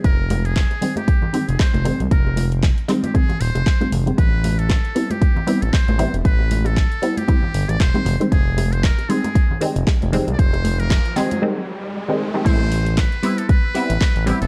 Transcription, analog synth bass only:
X:1
M:4/4
L:1/16
Q:"Swing 16ths" 1/4=116
K:Am
V:1 name="Analog synth bass" clef=bass
F,,,4- F,,, z6 F,,, z F,,, z C,, | F,,,4- F,,, z4 z _E,,, F,,, z2 F,,, z | A,,,4- A,,, z6 A,,, z A,,, z E,,, | A,,,4- A,,, z4 z G,,, A,,, E,,, z F,,, z |
F,,,4- F,,, z6 F,,, z F,,, z C,, | F,,,4- F,,, z8 z3 | A,,,4- A,,, z6 A,,, z A,,, z E,,, |]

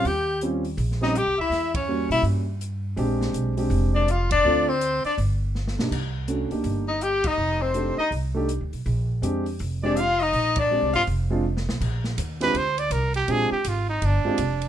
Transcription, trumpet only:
X:1
M:4/4
L:1/8
Q:"Swing" 1/4=163
K:Bbmix
V:1 name="Trumpet"
g2 z3 e g =e- | =e ^c2 e z4 | z4 z d f d- | d c2 d z4 |
z4 z e g e- | e c2 e z4 | z4 z d f e- | e d2 f z4 |
z3 _c =c d B G | A G F E D4 |]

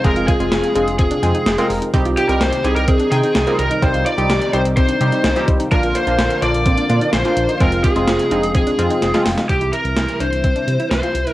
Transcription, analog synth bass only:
X:1
M:4/4
L:1/16
Q:1/4=127
K:Cm
V:1 name="Analog synth bass" clef=bass
F,,, F,,, z F,,, F,,, z F,,, F,,, F,,, z F,, z F,,, z F,,, z | C,, C,, z C,, C,, z C,, C,, C,, z C, z C,, z C,, z | C,, C,, z C,, C,, z C,, C,, C,, z C, z C,, z C,, z | B,,, B,,, z B,,, B,,, z B,,, B,,, B,,, z B,, z B,,, z B,,, z |
F,,, F,,, z F,,, F,,, z F,,, F,,, F,,, z F,, z F,,, z F,,, z | C,, C,, z C,, C,, z C,, C,, C,, z C, z C,, z C,, z |]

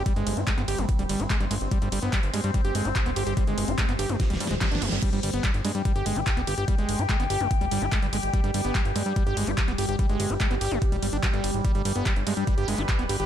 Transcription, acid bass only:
X:1
M:4/4
L:1/16
Q:1/4=145
K:G
V:1 name="Acid bass" clef=bass
G, _A,2 G A, B, G A, z G, G, G A, G, A, z | G, G, G, B, G, z _A, G, G, G A, G z B, G G | G, _A,2 G A, B, G A, z G, G, A, G, D G, G, | G, G, G, B, G, z _A, G, G, G A, G z B, G G |
G, _A,2 G A, B, G A, z G, G, G A, G, A, z | G, G, G, B, G, z _A, G, G, G A, G z B, G G | G, _A,2 G A, B, G A, z G, G, D F, G, G, z | G, G, G, B, G, z _A, G, G, G A, G z B, G G |]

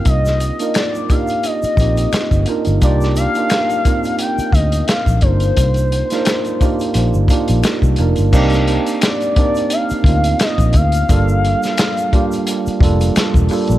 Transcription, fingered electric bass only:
X:1
M:4/4
L:1/16
Q:"Swing 16ths" 1/4=87
K:Cm
V:1 name="Fingered electric bass" clef=bass
C,,3 z6 z B,,,2 z G,,, z G,,, | C,,3 z6 z D,,2 z B,,, G,,,2 | C,,3 z4 z B,,, G,,, z B,,, z C,, F,,, G,,, | [K:Cdor] C,,3 z6 z D,,2 z B,,, D,,2 |
G,,,3 z6 z F,,,2 z =E,,, z B,,, |]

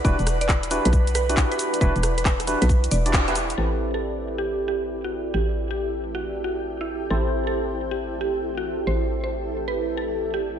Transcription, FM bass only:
X:1
M:4/4
L:1/16
Q:"Swing 16ths" 1/4=136
K:Ador
V:1 name="FM bass" clef=bass
E,,, E,,,6 B,,,6 z3 | E,,, E,,,6 B,,,3 E,,,6 | A,,,16 | A,,,16 |
A,,,16 | A,,,16 |]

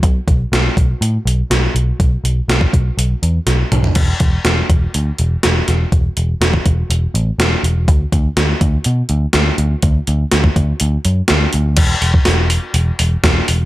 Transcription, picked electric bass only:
X:1
M:4/4
L:1/8
Q:1/4=123
K:Dlyd
V:1 name="Picked electric bass" clef=bass
B,,, B,,, B,,, B,,, A,, B,,, B,,, B,,, | B,,, B,,, B,,, B,,, B,,, E,, B,,, B,,, | E,,, E,,, E,,, E,,, D,, E,,, E,,, E,,, | E,,, E,,, E,,, E,,, E,,, A,,, E,,, E,,, |
D,, D,, D,, D,, B,, D,, D,, D,, | D,, D,, D,, D,, D,, F,, D,, D,, | E,,, E,,, E,,,2 E,,, E,,, E,,, E,,, |]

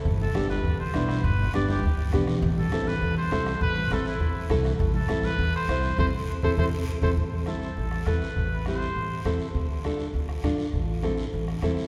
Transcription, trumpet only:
X:1
M:4/4
L:1/8
Q:1/4=202
K:Am
V:1 name="Trumpet"
z A2 B2 c3 | B2 d G3 z2 | z A2 B2 c3 | B2 A E3 z2 |
z A2 B2 c3 | c z2 c c z2 c | z2 A4 B2- | B2 c4- c z |
z8 | z8 |]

